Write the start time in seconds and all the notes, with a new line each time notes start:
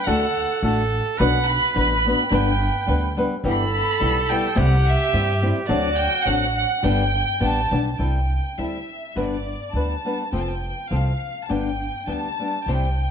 0.06 D2 D3 A3 D4 F#4 A4 F#5
0.63 A1 A3 D4 F#4 A4
1.18 B1 B2 F#3 B3 D4 F#4 B4 F#5
1.48 B5
1.74 A1 B3 D4 F#4 B4 B5
2.06 B3 D4 F#4 B4
2.29 G1 G2 D3 G3 B3 D4 B4 G5
2.86 D2 G3 B3 D4 B4
3.17 G3 B3 D4 B4
3.43 G1 G2 E3 G3 B3 E4 G4 A4 B5
4.00 B1 G3 B3 E4 G4
4.30 G3 B3 E4 G4 G5
4.55 C2 C3 G3 C4 E4 G4 F#5
4.86 E5
5.13 G2 G3 C4 E4 G4
5.42 G3 C4 E4 G4
5.68 D2 D3 F#3 C4 D4 F#4 A4 D5
6.00 G5
6.25 A1 F#3 C4 D4 A4 F#5
6.58 F#5
6.83 G1 G2 D3 G3 B3 D4 G4 G5
7.40 A1 G3 B3 D4 G4 A5
7.71 B1 G3 B3 D4 G4
7.99 C2 C3 G3 C4 E4 A4 G5
8.58 D2 G3 C4 E4 A4 E5
9.16 G1 G2 D3 G3 B3 D4 B4 D5
9.73 D2 G3 B3 D4 B4 A5
10.05 G3 B3 D4 B4
10.32 F1 F3 C4 F4 A4 G5
10.41 A5
10.50 G5
10.90 C2 F3 C4 F4 A4 F5
11.44 A5
11.49 G1 G2 D3 G3 B3 D4 G4 G5
12.07 D2 G3 B3 D4 G4 A5
12.40 G3 B3 D4 G4
12.66 C2 C3 G3 C4 E4 G4 G5